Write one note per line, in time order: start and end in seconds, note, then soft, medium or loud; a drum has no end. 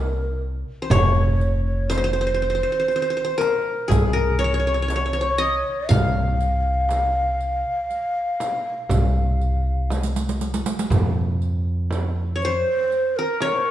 0.00 0.62 C2 loud
0.00 0.40 A#4 medium
0.82 0.97 C5 medium
0.90 2.62 F1 loud
0.90 1.62 C#5 medium
0.90 1.96 C#5 medium
0.90 riq medium
0.90 frame drum loud
0.90 darbuka dum loud
1.40 riq soft
1.40 darbuka ka soft
1.66 1.93 C#5 medium
1.90 1.97 C5 medium
1.90 3.40 C5 medium
1.90 riq soft
1.90 darbuka tek medium
1.90 frame drum medium
1.98 2.04 C5 medium
2.04 2.13 C5 medium
2.13 2.21 C5 medium
2.21 2.26 C5 medium
2.27 2.34 C5 medium
2.34 2.42 C5 medium
2.42 2.49 C5 medium
2.50 2.54 C5 medium
2.55 2.63 C5 medium
2.63 2.72 C5 medium
2.72 2.79 C5 soft
2.80 2.88 C5 medium
2.88 2.95 C5 medium
2.88 riq soft
2.96 3.02 C5 medium
3.02 3.10 C5 medium
3.10 3.16 C5 medium
3.17 3.24 C5 medium
3.25 4.30 C5 medium
3.38 4.13 A#4 medium
3.38 3.92 A#4 medium
3.38 riq medium
3.38 darbuka tek medium
3.38 frame drum medium
3.88 5.62 C2 medium
3.88 5.09 G#4 medium
3.88 4.42 G#4 medium
3.88 riq medium
3.88 darbuka dum loud
3.88 frame drum medium
4.13 5.26 A#4 medium
4.39 4.44 C#5 medium
4.39 4.89 C#5 medium
4.39 riq soft
4.44 4.54 C#5 medium
4.54 4.59 C#5 medium
4.60 4.67 C#5 medium
4.67 4.74 C#5 medium
4.74 4.82 C#5 medium
4.82 4.88 C#5 medium
4.88 4.95 C#5 medium
4.88 riq medium
4.88 darbuka tek medium
4.88 frame drum medium
4.96 5.05 C#5 medium
5.06 5.13 C#5 medium
5.13 5.28 C5 medium
5.13 5.21 C#5 medium
5.21 6.23 C#5 medium
5.28 5.91 C#5 medium
5.38 6.33 D#5 loud
5.89 7.62 C2 loud
5.89 9.86 F5 loud
5.89 9.90 F5 medium
5.89 riq medium
5.89 darbuka dum loud
5.89 frame drum medium
6.40 riq soft
6.40 darbuka ka soft
6.89 riq soft
6.89 darbuka tek medium
6.89 frame drum medium
7.41 riq soft
7.91 riq soft
7.91 darbuka ka soft
8.40 riq soft
8.40 darbuka tek medium
8.40 frame drum medium
8.89 10.62 C2 loud
8.89 riq medium
8.89 frame drum medium
8.89 darbuka dum medium
9.40 riq soft
9.40 darbuka ka soft
9.90 riq medium
9.90 darbuka tek medium
9.90 frame drum medium
10.03 riq medium
10.16 riq medium
10.29 riq medium
10.41 riq medium
10.54 riq medium
10.66 riq medium
10.79 riq medium
10.90 12.62 F2 loud
10.90 riq medium
10.90 darbuka dum loud
10.90 frame drum loud
11.42 riq soft
11.42 darbuka ka soft
11.91 riq soft
11.91 frame drum medium
12.36 12.51 C#5 medium
12.40 13.18 C5 loud
12.40 riq soft
12.45 13.48 C5 medium
12.92 riq soft
13.16 13.56 A#4 medium
13.16 13.71 A#4 medium
13.41 13.71 C#5 medium
13.41 riq soft
13.41 darbuka tek medium
13.41 frame drum medium
13.54 13.66 C5 medium
13.65 13.71 A#4 medium